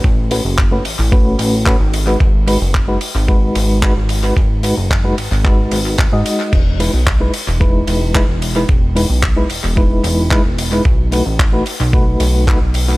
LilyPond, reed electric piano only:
\new Staff \with { instrumentName = "Reed electric piano" } { \time 4/4 \key e \major \tempo 4 = 111 r8 <a cis' fis' b'>16 r8 <a cis' fis' b'>16 r8 <a cis' fis' b'>4 <a cis' fis' b'>16 r8 <gis dis' fis' b'>16 | r8 <gis dis' fis' b'>16 r8 <gis dis' fis' b'>16 r8 <gis dis' fis' b'>4 <gis dis' fis' b'>16 r8 <gis dis' fis' b'>16 | r8 <gis dis' fis' b'>16 r8 <gis dis' fis' b'>16 r8 <gis dis' fis' b'>4 r16 <gis dis' fis' dis''>8. | r8 <gis dis' e' b'>16 r8 <gis dis' e' b'>16 r8 <gis dis' e' b'>4 <gis dis' e' b'>16 r8 <gis dis' e' b'>16 |
r8 <gis dis' e' b'>16 r8 <gis dis' e' b'>16 r8 <gis dis' e' b'>4 <gis dis' e' b'>16 r8 <gis dis' e' b'>16 | r8 <a dis' fis' b'>16 r8 <a dis' fis' b'>16 r8 <a dis' fis' b'>4 <a dis' fis' b'>16 r8 <a dis' fis' b'>16 | }